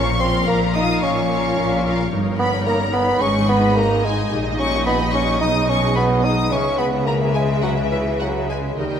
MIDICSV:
0, 0, Header, 1, 8, 480
1, 0, Start_track
1, 0, Tempo, 549451
1, 1854, Time_signature, 4, 2, 24, 8
1, 6174, Tempo, 577478
1, 7780, End_track
2, 0, Start_track
2, 0, Title_t, "Violin section"
2, 0, Program_c, 0, 48
2, 0, Note_on_c, 0, 85, 70
2, 165, Note_off_c, 0, 85, 0
2, 171, Note_on_c, 0, 84, 67
2, 415, Note_off_c, 0, 84, 0
2, 418, Note_on_c, 0, 82, 63
2, 654, Note_on_c, 0, 87, 70
2, 661, Note_off_c, 0, 82, 0
2, 898, Note_on_c, 0, 85, 52
2, 900, Note_off_c, 0, 87, 0
2, 1832, Note_off_c, 0, 85, 0
2, 2088, Note_on_c, 0, 83, 69
2, 2309, Note_off_c, 0, 83, 0
2, 2324, Note_on_c, 0, 82, 61
2, 2560, Note_off_c, 0, 82, 0
2, 2562, Note_on_c, 0, 83, 61
2, 2801, Note_on_c, 0, 85, 62
2, 2805, Note_off_c, 0, 83, 0
2, 3046, Note_off_c, 0, 85, 0
2, 3046, Note_on_c, 0, 83, 60
2, 3291, Note_off_c, 0, 83, 0
2, 3293, Note_on_c, 0, 82, 52
2, 3532, Note_on_c, 0, 80, 57
2, 3535, Note_off_c, 0, 82, 0
2, 3768, Note_off_c, 0, 80, 0
2, 4005, Note_on_c, 0, 85, 73
2, 4230, Note_off_c, 0, 85, 0
2, 4247, Note_on_c, 0, 83, 62
2, 4484, Note_off_c, 0, 83, 0
2, 4487, Note_on_c, 0, 85, 64
2, 4725, Note_on_c, 0, 87, 58
2, 4729, Note_off_c, 0, 85, 0
2, 4964, Note_off_c, 0, 87, 0
2, 4964, Note_on_c, 0, 85, 64
2, 5205, Note_off_c, 0, 85, 0
2, 5205, Note_on_c, 0, 83, 51
2, 5275, Note_off_c, 0, 83, 0
2, 5441, Note_on_c, 0, 87, 59
2, 5682, Note_off_c, 0, 87, 0
2, 5687, Note_on_c, 0, 85, 63
2, 5924, Note_on_c, 0, 83, 60
2, 5929, Note_off_c, 0, 85, 0
2, 5994, Note_off_c, 0, 83, 0
2, 6169, Note_on_c, 0, 82, 58
2, 6236, Note_off_c, 0, 82, 0
2, 6402, Note_on_c, 0, 80, 50
2, 6469, Note_off_c, 0, 80, 0
2, 6636, Note_on_c, 0, 78, 41
2, 6702, Note_off_c, 0, 78, 0
2, 6877, Note_on_c, 0, 76, 38
2, 6944, Note_off_c, 0, 76, 0
2, 7113, Note_on_c, 0, 78, 38
2, 7180, Note_off_c, 0, 78, 0
2, 7359, Note_on_c, 0, 80, 43
2, 7426, Note_off_c, 0, 80, 0
2, 7607, Note_on_c, 0, 79, 53
2, 7780, Note_off_c, 0, 79, 0
2, 7780, End_track
3, 0, Start_track
3, 0, Title_t, "Violin section"
3, 0, Program_c, 1, 48
3, 0, Note_on_c, 1, 77, 42
3, 163, Note_off_c, 1, 77, 0
3, 174, Note_on_c, 1, 77, 47
3, 650, Note_off_c, 1, 77, 0
3, 659, Note_on_c, 1, 77, 49
3, 1127, Note_off_c, 1, 77, 0
3, 1137, Note_on_c, 1, 77, 42
3, 1605, Note_off_c, 1, 77, 0
3, 1621, Note_on_c, 1, 77, 44
3, 1851, Note_off_c, 1, 77, 0
3, 1858, Note_on_c, 1, 73, 58
3, 2774, Note_off_c, 1, 73, 0
3, 2812, Note_on_c, 1, 75, 66
3, 5660, Note_off_c, 1, 75, 0
3, 5694, Note_on_c, 1, 76, 57
3, 7574, Note_off_c, 1, 76, 0
3, 7612, Note_on_c, 1, 75, 42
3, 7780, Note_off_c, 1, 75, 0
3, 7780, End_track
4, 0, Start_track
4, 0, Title_t, "Viola section"
4, 0, Program_c, 2, 48
4, 0, Note_on_c, 2, 65, 45
4, 0, Note_on_c, 2, 70, 41
4, 161, Note_off_c, 2, 65, 0
4, 163, Note_off_c, 2, 70, 0
4, 172, Note_on_c, 2, 65, 45
4, 174, Note_on_c, 2, 70, 52
4, 649, Note_off_c, 2, 65, 0
4, 650, Note_off_c, 2, 70, 0
4, 658, Note_on_c, 2, 65, 54
4, 659, Note_on_c, 2, 70, 48
4, 1131, Note_off_c, 2, 65, 0
4, 1133, Note_off_c, 2, 70, 0
4, 1141, Note_on_c, 2, 65, 48
4, 1143, Note_on_c, 2, 70, 51
4, 1603, Note_off_c, 2, 70, 0
4, 1607, Note_off_c, 2, 65, 0
4, 1614, Note_on_c, 2, 70, 47
4, 1617, Note_on_c, 2, 65, 49
4, 1844, Note_off_c, 2, 70, 0
4, 1849, Note_off_c, 2, 65, 0
4, 1855, Note_on_c, 2, 63, 54
4, 1855, Note_on_c, 2, 70, 56
4, 2773, Note_off_c, 2, 70, 0
4, 2807, Note_on_c, 2, 68, 55
4, 3740, Note_off_c, 2, 68, 0
4, 3777, Note_on_c, 2, 67, 53
4, 4697, Note_off_c, 2, 67, 0
4, 4732, Note_on_c, 2, 68, 52
4, 5659, Note_off_c, 2, 63, 0
4, 5659, Note_off_c, 2, 68, 0
4, 5694, Note_on_c, 2, 68, 51
4, 5696, Note_on_c, 2, 71, 55
4, 7574, Note_off_c, 2, 68, 0
4, 7575, Note_off_c, 2, 71, 0
4, 7608, Note_on_c, 2, 63, 37
4, 7608, Note_on_c, 2, 70, 38
4, 7780, Note_off_c, 2, 63, 0
4, 7780, Note_off_c, 2, 70, 0
4, 7780, End_track
5, 0, Start_track
5, 0, Title_t, "Bassoon"
5, 0, Program_c, 3, 70
5, 173, Note_on_c, 3, 60, 67
5, 409, Note_off_c, 3, 60, 0
5, 414, Note_on_c, 3, 58, 70
5, 524, Note_off_c, 3, 58, 0
5, 658, Note_on_c, 3, 63, 80
5, 897, Note_on_c, 3, 61, 78
5, 910, Note_off_c, 3, 63, 0
5, 1851, Note_off_c, 3, 61, 0
5, 2088, Note_on_c, 3, 59, 72
5, 2195, Note_off_c, 3, 59, 0
5, 2327, Note_on_c, 3, 58, 64
5, 2435, Note_off_c, 3, 58, 0
5, 2562, Note_on_c, 3, 59, 76
5, 2807, Note_on_c, 3, 61, 81
5, 2820, Note_off_c, 3, 59, 0
5, 3041, Note_off_c, 3, 61, 0
5, 3047, Note_on_c, 3, 59, 74
5, 3281, Note_off_c, 3, 59, 0
5, 3286, Note_on_c, 3, 58, 73
5, 3531, Note_on_c, 3, 56, 61
5, 3544, Note_off_c, 3, 58, 0
5, 3773, Note_off_c, 3, 56, 0
5, 4010, Note_on_c, 3, 61, 68
5, 4232, Note_off_c, 3, 61, 0
5, 4249, Note_on_c, 3, 59, 67
5, 4357, Note_off_c, 3, 59, 0
5, 4490, Note_on_c, 3, 61, 76
5, 4718, Note_off_c, 3, 61, 0
5, 4723, Note_on_c, 3, 63, 80
5, 4970, Note_on_c, 3, 61, 79
5, 4983, Note_off_c, 3, 63, 0
5, 5206, Note_off_c, 3, 61, 0
5, 5211, Note_on_c, 3, 59, 73
5, 5456, Note_on_c, 3, 63, 69
5, 5469, Note_off_c, 3, 59, 0
5, 5692, Note_on_c, 3, 61, 81
5, 5705, Note_off_c, 3, 63, 0
5, 5929, Note_on_c, 3, 59, 65
5, 5943, Note_off_c, 3, 61, 0
5, 6171, Note_on_c, 3, 58, 59
5, 6183, Note_off_c, 3, 59, 0
5, 6405, Note_on_c, 3, 56, 66
5, 6417, Note_off_c, 3, 58, 0
5, 6634, Note_off_c, 3, 56, 0
5, 6639, Note_on_c, 3, 54, 55
5, 6746, Note_off_c, 3, 54, 0
5, 6878, Note_on_c, 3, 52, 53
5, 7122, Note_on_c, 3, 54, 46
5, 7135, Note_off_c, 3, 52, 0
5, 7357, Note_off_c, 3, 54, 0
5, 7362, Note_on_c, 3, 56, 43
5, 7602, Note_off_c, 3, 56, 0
5, 7606, Note_on_c, 3, 55, 57
5, 7780, Note_off_c, 3, 55, 0
5, 7780, End_track
6, 0, Start_track
6, 0, Title_t, "Harp"
6, 0, Program_c, 4, 46
6, 0, Note_on_c, 4, 46, 48
6, 0, Note_on_c, 4, 65, 42
6, 90, Note_on_c, 4, 53, 40
6, 254, Note_on_c, 4, 58, 42
6, 403, Note_off_c, 4, 65, 0
6, 414, Note_on_c, 4, 65, 40
6, 574, Note_on_c, 4, 70, 47
6, 728, Note_off_c, 4, 58, 0
6, 738, Note_on_c, 4, 58, 41
6, 887, Note_off_c, 4, 46, 0
6, 898, Note_on_c, 4, 46, 44
6, 1046, Note_off_c, 4, 53, 0
6, 1057, Note_on_c, 4, 53, 45
6, 1208, Note_off_c, 4, 58, 0
6, 1218, Note_on_c, 4, 58, 47
6, 1367, Note_off_c, 4, 65, 0
6, 1377, Note_on_c, 4, 65, 43
6, 1524, Note_off_c, 4, 70, 0
6, 1535, Note_on_c, 4, 70, 45
6, 1682, Note_off_c, 4, 58, 0
6, 1692, Note_on_c, 4, 58, 47
6, 1850, Note_on_c, 4, 43, 49
6, 1869, Note_off_c, 4, 53, 0
6, 1870, Note_off_c, 4, 46, 0
6, 1871, Note_off_c, 4, 65, 0
6, 2007, Note_on_c, 4, 55, 44
6, 2167, Note_on_c, 4, 61, 45
6, 2324, Note_on_c, 4, 63, 39
6, 2474, Note_off_c, 4, 70, 0
6, 2484, Note_on_c, 4, 70, 48
6, 2631, Note_off_c, 4, 61, 0
6, 2641, Note_on_c, 4, 61, 42
6, 2808, Note_on_c, 4, 44, 53
6, 2824, Note_off_c, 4, 61, 0
6, 2825, Note_off_c, 4, 43, 0
6, 2825, Note_off_c, 4, 55, 0
6, 2825, Note_off_c, 4, 58, 0
6, 2825, Note_off_c, 4, 70, 0
6, 2966, Note_on_c, 4, 51, 44
6, 3130, Note_on_c, 4, 59, 50
6, 3283, Note_off_c, 4, 63, 0
6, 3293, Note_on_c, 4, 63, 43
6, 3456, Note_on_c, 4, 68, 47
6, 3611, Note_off_c, 4, 59, 0
6, 3622, Note_on_c, 4, 59, 40
6, 3778, Note_on_c, 4, 46, 53
6, 3793, Note_off_c, 4, 51, 0
6, 3794, Note_off_c, 4, 44, 0
6, 3794, Note_off_c, 4, 68, 0
6, 3797, Note_off_c, 4, 59, 0
6, 3935, Note_on_c, 4, 55, 42
6, 4094, Note_on_c, 4, 58, 44
6, 4241, Note_off_c, 4, 63, 0
6, 4251, Note_on_c, 4, 63, 42
6, 4410, Note_on_c, 4, 67, 45
6, 4563, Note_off_c, 4, 58, 0
6, 4574, Note_on_c, 4, 58, 40
6, 4736, Note_on_c, 4, 47, 49
6, 4750, Note_off_c, 4, 67, 0
6, 4751, Note_off_c, 4, 55, 0
6, 4752, Note_off_c, 4, 46, 0
6, 4752, Note_off_c, 4, 58, 0
6, 4892, Note_on_c, 4, 59, 39
6, 5052, Note_on_c, 4, 56, 43
6, 5200, Note_off_c, 4, 63, 0
6, 5371, Note_on_c, 4, 68, 38
6, 5523, Note_off_c, 4, 56, 0
6, 5533, Note_on_c, 4, 56, 42
6, 5691, Note_on_c, 4, 49, 50
6, 5715, Note_off_c, 4, 47, 0
6, 5842, Note_off_c, 4, 56, 0
6, 5852, Note_on_c, 4, 56, 37
6, 6003, Note_off_c, 4, 59, 0
6, 6014, Note_on_c, 4, 59, 40
6, 6172, Note_on_c, 4, 64, 32
6, 6315, Note_off_c, 4, 68, 0
6, 6325, Note_on_c, 4, 68, 35
6, 6470, Note_off_c, 4, 59, 0
6, 6480, Note_on_c, 4, 59, 33
6, 6632, Note_off_c, 4, 49, 0
6, 6642, Note_on_c, 4, 49, 35
6, 6790, Note_off_c, 4, 56, 0
6, 6800, Note_on_c, 4, 56, 28
6, 6948, Note_off_c, 4, 59, 0
6, 6958, Note_on_c, 4, 59, 32
6, 7111, Note_off_c, 4, 64, 0
6, 7121, Note_on_c, 4, 64, 31
6, 7271, Note_off_c, 4, 68, 0
6, 7281, Note_on_c, 4, 68, 29
6, 7434, Note_off_c, 4, 59, 0
6, 7444, Note_on_c, 4, 59, 29
6, 7606, Note_on_c, 4, 51, 34
6, 7627, Note_off_c, 4, 49, 0
6, 7627, Note_off_c, 4, 56, 0
6, 7627, Note_off_c, 4, 59, 0
6, 7627, Note_off_c, 4, 64, 0
6, 7627, Note_off_c, 4, 68, 0
6, 7780, Note_off_c, 4, 51, 0
6, 7780, End_track
7, 0, Start_track
7, 0, Title_t, "Cello section"
7, 0, Program_c, 5, 48
7, 0, Note_on_c, 5, 46, 50
7, 360, Note_off_c, 5, 46, 0
7, 415, Note_on_c, 5, 46, 61
7, 845, Note_off_c, 5, 46, 0
7, 900, Note_on_c, 5, 46, 59
7, 1324, Note_off_c, 5, 46, 0
7, 1379, Note_on_c, 5, 46, 68
7, 1797, Note_off_c, 5, 46, 0
7, 1851, Note_on_c, 5, 43, 59
7, 2771, Note_off_c, 5, 43, 0
7, 2807, Note_on_c, 5, 44, 57
7, 3774, Note_off_c, 5, 44, 0
7, 3777, Note_on_c, 5, 46, 53
7, 4713, Note_off_c, 5, 46, 0
7, 4734, Note_on_c, 5, 47, 56
7, 5692, Note_on_c, 5, 49, 47
7, 5694, Note_off_c, 5, 47, 0
7, 7606, Note_off_c, 5, 49, 0
7, 7608, Note_on_c, 5, 51, 33
7, 7780, Note_off_c, 5, 51, 0
7, 7780, End_track
8, 0, Start_track
8, 0, Title_t, "Double bass section"
8, 0, Program_c, 6, 48
8, 0, Note_on_c, 6, 34, 55
8, 359, Note_off_c, 6, 34, 0
8, 418, Note_on_c, 6, 34, 55
8, 846, Note_off_c, 6, 34, 0
8, 902, Note_on_c, 6, 34, 58
8, 1324, Note_off_c, 6, 34, 0
8, 1381, Note_on_c, 6, 34, 73
8, 1798, Note_off_c, 6, 34, 0
8, 1854, Note_on_c, 6, 31, 59
8, 2773, Note_off_c, 6, 31, 0
8, 2811, Note_on_c, 6, 32, 57
8, 3776, Note_on_c, 6, 34, 57
8, 3777, Note_off_c, 6, 32, 0
8, 4712, Note_off_c, 6, 34, 0
8, 4730, Note_on_c, 6, 35, 51
8, 5693, Note_off_c, 6, 35, 0
8, 5698, Note_on_c, 6, 37, 49
8, 7606, Note_on_c, 6, 39, 36
8, 7609, Note_off_c, 6, 37, 0
8, 7780, Note_off_c, 6, 39, 0
8, 7780, End_track
0, 0, End_of_file